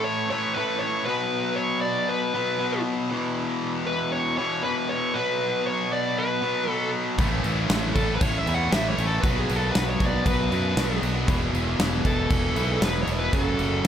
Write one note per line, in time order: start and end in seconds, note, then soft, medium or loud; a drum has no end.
0.00 0.28 A2 loud
0.00 0.29 E3 medium
0.00 0.29 A3 loud
0.04 0.28 C#5 loud
0.30 0.55 A2 medium
0.30 0.54 E3 medium
0.30 0.54 A3 medium
0.30 0.54 C#5 medium
0.54 1.05 A2 medium
0.54 1.06 E3 medium
0.54 0.81 B4 medium
0.58 1.06 A3 medium
0.79 1.04 C#5 medium
1.05 2.32 B2 medium
1.05 2.33 F#3 medium
1.05 2.34 B3 medium
1.05 1.58 B4 loud
1.56 1.81 C#5 loud
1.81 2.08 D5 loud
2.09 2.81 B4 loud
2.34 2.58 B2 medium
2.34 2.59 F#3 medium
2.34 2.60 B3 loud
2.59 3.09 B2 medium
2.59 3.09 F#3 medium
2.59 5.16 B3 medium
3.11 4.37 E2 medium
3.11 4.37 B2 loud
3.11 4.36 E3 loud
3.87 4.11 B4 medium
4.12 4.36 C#5 loud
4.37 4.62 E2 medium
4.37 4.62 B2 medium
4.37 4.62 E3 medium
4.37 4.61 C#5 medium
4.63 5.13 E2 medium
4.63 5.13 B2 medium
4.63 5.14 E3 medium
4.63 4.90 B4 medium
4.89 5.15 C#5 loud
5.14 6.41 B2 medium
5.14 6.41 F#3 medium
5.14 6.40 B3 loud
5.14 5.67 B4 loud
5.66 5.92 C#5 loud
5.93 6.18 D5 loud
6.18 6.71 B4 loud
6.42 6.66 B2 medium
6.42 6.67 F#3 medium
6.42 6.66 B3 medium
6.67 7.17 B2 medium
6.67 7.18 F#3 medium
6.67 7.18 B3 medium
6.67 6.90 A4 loud
7.18 7.40 A1 loud
7.18 8.45 A2 medium
7.18 7.43 A2 medium
7.18 7.44 E3 medium
7.18 8.46 E3 medium
7.18 7.44 A3 medium
7.18 8.45 A3 loud
7.18 7.44 C#4 loud
7.18 7.45 E4 loud
7.18 kick loud
7.18 crash medium
7.44 7.66 A1 medium
7.44 7.69 A2 medium
7.44 7.70 E3 medium
7.44 7.70 A3 loud
7.44 7.70 C#4 loud
7.44 7.71 E4 loud
7.44 crash medium
7.70 7.91 A1 medium
7.70 7.94 A2 medium
7.70 7.95 E3 medium
7.70 7.96 A3 loud
7.70 7.96 C#4 loud
7.70 7.96 E4 loud
7.70 snare loud
7.70 crash medium
7.95 8.17 A1 loud
7.95 8.20 A2 medium
7.95 8.21 E3 medium
7.95 8.21 A3 medium
7.95 8.22 C#4 medium
7.95 8.22 E4 medium
7.95 8.15 A4 loud
7.95 kick medium
7.95 crash medium
8.16 8.21 B4 medium
8.21 8.42 A1 medium
8.21 8.45 A2 loud
8.21 8.46 E3 loud
8.21 8.46 A3 loud
8.21 8.46 C#4 loud
8.21 8.47 E4 loud
8.21 8.38 C#5 loud
8.21 kick loud
8.21 crash medium
8.38 8.55 E5 loud
8.46 8.68 E2 loud
8.46 8.71 A2 medium
8.46 8.72 A2 medium
8.46 8.72 E3 medium
8.46 8.71 E3 medium
8.46 8.71 A3 medium
8.46 8.72 A3 medium
8.46 8.72 C#4 loud
8.46 8.73 E4 loud
8.46 crash medium
8.54 8.72 F#5 loud
8.71 8.93 A1 loud
8.71 8.97 A2 loud
8.71 9.22 A2 medium
8.71 8.97 E3 medium
8.71 9.23 E3 medium
8.71 8.98 A3 medium
8.71 9.23 A3 medium
8.71 8.98 C#4 medium
8.71 8.98 E4 loud
8.71 8.89 E5 loud
8.71 snare loud
8.71 crash medium
8.89 9.05 C#5 medium
8.98 9.19 A1 medium
8.98 9.22 A2 medium
8.98 9.22 E3 medium
8.98 9.23 A3 loud
8.98 9.23 C#4 loud
8.98 9.23 E4 medium
8.98 crash medium
9.06 9.21 A4 loud
9.21 9.44 B1 loud
9.21 10.50 B2 medium
9.21 9.48 B2 medium
9.21 9.49 F#3 medium
9.21 10.50 F#3 loud
9.21 9.50 B3 medium
9.21 9.50 D4 medium
9.21 9.50 F#4 loud
9.21 9.39 B4 loud
9.21 kick loud
9.21 crash medium
9.25 10.49 B3 loud
9.39 9.56 G#4 medium
9.49 9.71 B1 medium
9.49 9.73 B2 loud
9.49 9.74 F#3 medium
9.49 9.75 B3 loud
9.49 9.74 D4 loud
9.49 9.75 F#4 loud
9.49 crash medium
9.56 9.72 A4 medium
9.72 9.96 B1 medium
9.72 9.99 B2 medium
9.72 10.00 F#3 medium
9.72 10.01 B3 loud
9.72 10.01 D4 loud
9.72 9.89 B4 medium
9.72 snare loud
9.72 crash medium
9.76 10.01 F#4 loud
9.89 10.06 C#5 loud
10.00 10.21 B1 medium
10.00 10.24 B2 medium
10.00 10.25 F#3 medium
10.00 10.26 B3 medium
10.00 10.26 D4 medium
10.00 10.27 F#4 loud
10.00 kick medium
10.00 crash medium
10.06 10.23 D5 medium
10.25 10.47 B1 medium
10.25 10.50 B2 loud
10.25 10.51 F#3 medium
10.25 10.51 B3 loud
10.25 10.52 D4 loud
10.25 10.52 F#4 loud
10.25 10.98 B4 medium
10.25 kick loud
10.25 crash medium
10.50 10.73 F#2 medium
10.50 10.75 B2 medium
10.50 10.76 F#3 medium
10.50 10.75 B3 medium
10.50 10.76 B3 loud
10.50 10.77 D4 loud
10.50 10.77 F#4 loud
10.50 crash medium
10.76 10.98 B1 loud
10.76 11.26 B2 medium
10.76 11.01 B2 medium
10.76 11.01 F#3 medium
10.76 11.27 F#3 medium
10.76 11.02 B3 medium
10.76 11.27 B3 medium
10.76 11.02 D4 loud
10.76 11.02 F#4 loud
10.76 snare loud
10.76 crash loud
11.02 11.24 B1 loud
11.02 11.27 B2 medium
11.02 11.27 F#3 medium
11.02 11.26 B3 medium
11.02 11.27 D4 loud
11.02 11.27 F#4 medium
11.02 crash medium
11.27 11.49 E1 loud
11.27 12.55 E2 medium
11.27 12.55 B2 medium
11.27 11.52 E3 loud
11.27 12.54 E3 loud
11.27 11.53 B3 loud
11.27 11.53 E4 medium
11.27 11.54 G#4 loud
11.27 kick loud
11.27 crash medium
11.53 11.75 E1 medium
11.53 11.78 E3 loud
11.53 11.79 B3 medium
11.53 11.80 E4 loud
11.53 11.80 G#4 loud
11.53 crash medium
11.79 12.00 E1 medium
11.79 12.04 E3 medium
11.79 12.04 B3 loud
11.79 12.05 E4 loud
11.79 12.05 G#4 loud
11.79 snare loud
11.79 crash loud
12.05 12.26 E1 medium
12.05 12.30 E3 medium
12.05 12.30 B3 medium
12.05 12.31 E4 medium
12.05 12.31 G#4 medium
12.05 12.83 A4 medium
12.05 kick medium
12.05 crash medium
12.30 12.52 E1 medium
12.30 12.55 E3 loud
12.30 12.55 B3 loud
12.30 12.56 E4 loud
12.30 12.56 G#4 loud
12.30 kick loud
12.30 crash medium
12.55 12.77 B1 loud
12.55 12.80 E2 medium
12.55 12.81 B2 medium
12.55 12.80 E3 loud
12.55 12.81 E3 medium
12.55 12.81 B3 medium
12.55 12.82 E4 loud
12.55 12.82 G#4 loud
12.55 crash medium
12.81 13.03 E1 loud
12.81 13.32 E2 medium
12.81 13.32 B2 medium
12.81 13.06 E3 medium
12.81 13.33 E3 medium
12.81 13.06 B3 loud
12.81 13.06 E4 loud
12.81 13.07 G#4 loud
12.81 12.99 B4 loud
12.81 snare loud
12.81 crash loud
13.02 13.07 C#5 loud
13.07 13.29 E1 medium
13.07 13.32 E3 medium
13.07 13.32 B3 medium
13.07 13.32 E4 loud
13.07 13.32 G#4 loud
13.07 crash medium
13.19 13.35 B4 loud
13.32 13.54 F#1 loud
13.32 13.87 F#2 loud
13.32 13.87 C#3 loud
13.32 13.57 F#3 medium
13.32 13.87 F#3 loud
13.32 13.57 A3 loud
13.32 13.57 C#4 loud
13.32 13.58 F#4 loud
13.32 13.87 A4 medium
13.32 kick loud
13.32 crash medium
13.58 13.81 F#1 loud
13.58 13.83 F#3 medium
13.58 13.84 A3 medium
13.58 13.84 C#4 medium
13.58 13.84 F#4 loud
13.58 crash medium